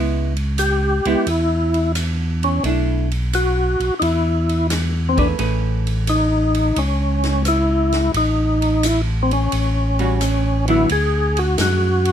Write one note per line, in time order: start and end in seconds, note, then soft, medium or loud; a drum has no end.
0.00 1.01 C#2 medium
0.00 0.32 G#3 soft
0.00 0.32 B3 soft
0.00 0.33 E4 medium
0.36 ride soft
0.58 1.29 G4 medium
0.58 hi-hat pedal medium
0.58 ride medium
1.05 1.16 C#2 soft
1.05 1.25 G#3 medium
1.05 1.25 B3 medium
1.05 1.25 E4 medium
1.05 ride soft
1.26 2.60 E2 medium
1.26 1.92 E4 medium
1.26 ride medium
1.74 ride soft
1.95 cross-stick medium
1.95 hi-hat pedal medium
1.95 ride medium
2.43 2.63 C#4 medium
2.43 ride soft
2.64 3.76 B1 medium
2.64 3.07 A3 soft
2.64 3.07 D4 medium
2.64 3.07 E4 medium
2.64 ride soft
3.11 ride soft
3.33 3.94 F#4 medium
3.33 hi-hat pedal soft
3.33 ride medium
3.80 3.91 B1 soft
3.80 ride soft
3.99 5.35 E2 medium
3.99 4.03 D#4 medium
3.99 4.67 E4 medium
3.99 ride medium
4.49 ride soft
4.70 cross-stick medium
4.70 snare soft
4.70 hi-hat pedal soft
4.70 ride medium
5.09 5.18 C4 medium
5.17 5.37 A3 medium
5.17 5.28 D4 medium
5.17 5.37 G#4 medium
5.17 5.38 B4 medium
5.17 kick soft
5.17 ride soft
5.38 6.73 A1 medium
5.38 7.32 A3 soft
5.38 7.33 C#4 soft
5.38 7.33 G#4 soft
5.38 7.33 B4 soft
5.38 ride soft
5.87 ride soft
6.07 6.80 D#4 medium
6.07 hi-hat pedal medium
6.07 ride medium
6.54 ride soft
6.76 8.10 C#2 medium
6.76 7.43 C#4 medium
6.76 ride medium
7.23 snare soft
7.23 ride soft
7.45 8.12 E4 medium
7.45 cross-stick medium
7.45 hi-hat pedal medium
7.45 ride medium
7.92 snare soft
7.92 ride soft
8.14 9.48 A1 medium
8.14 8.87 D#4 medium
8.14 ride medium
8.62 ride soft
8.83 9.01 E4 medium
8.83 hi-hat pedal medium
8.83 ride medium
9.23 9.32 C4 soft
9.31 10.65 C#4 medium
9.31 ride soft
9.52 10.86 A1 medium
9.52 ride medium
9.99 10.19 G3 medium
9.99 10.19 C#4 medium
9.99 10.19 F#4 medium
9.99 ride soft
10.21 cross-stick medium
10.21 hi-hat pedal medium
10.21 ride medium
10.68 10.87 D3 medium
10.68 10.88 F#3 medium
10.68 10.88 B3 medium
10.68 10.88 E4 medium
10.68 10.89 E4 medium
10.68 ride soft
10.89 11.57 D2 medium
10.89 11.40 G#4 loud
10.89 ride medium
11.37 11.58 F#4 medium
11.37 ride soft
11.58 12.12 F#2 medium
11.58 12.12 F#4 medium
11.58 snare medium
11.58 hi-hat pedal medium
11.58 ride medium
12.05 ride soft